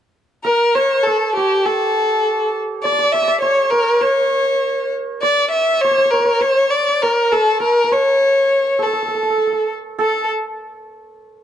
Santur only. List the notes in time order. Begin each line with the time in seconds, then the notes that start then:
0.44 A#4
0.75 C#5
1.07 A4
1.37 G4
1.65 A4
2.85 D5
2.92 D5
2.99 D5
3.04 D5
3.14 D5
3.22 D5
3.28 D5
3.42 C#5
3.72 A#4
4.01 C#5
5.23 D5
5.84 C#5
5.91 C#5
5.98 C#5
6.05 C#5
6.13 C#5
6.20 C#5
6.25 C#5
6.40 C#5
7.03 A#4
7.32 A4
7.60 A#4
7.84 A#4
7.91 C#5
8.79 A4
8.86 A4
8.93 A4
9.03 A4
9.08 A4
9.15 A4
9.23 A4
9.30 A4
9.38 A4
9.47 A4
9.53 A4
9.99 A4